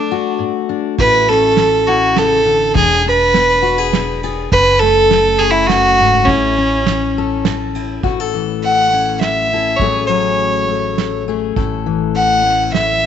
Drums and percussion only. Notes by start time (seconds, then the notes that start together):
0.98 kick, ride
1.57 snare, ride
2.16 snare, ride
2.75 kick, ride
3.34 snare, ride
3.93 snare, ride
4.23 ride
4.52 kick, ride
5.11 snare, ride
5.69 snare, ride
6.27 kick, ride
6.86 snare, ride
7.45 snare, ride
7.75 ride
8.03 kick, closed hi-hat
8.63 closed hi-hat
9.21 snare, closed hi-hat
9.79 kick, closed hi-hat
10.39 closed hi-hat
10.98 snare, closed hi-hat
11.56 kick, closed hi-hat
12.16 closed hi-hat
12.74 snare, closed hi-hat